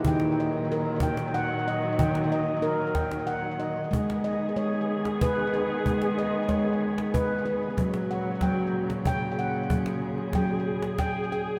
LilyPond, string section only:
\new Staff \with { instrumentName = "String section" } { \clef bass \time 6/8 \key gis \minor \tempo 4. = 62 << { fis2.~ | fis2. | gis'2.~ | gis'2. |
fis2. | gis'2. | } \\ { <ais, dis>2.~ | <ais, dis>2. | <dis b>2.~ | <dis b>2. |
<ais, cis>2.~ | <ais, cis>2. | } >> }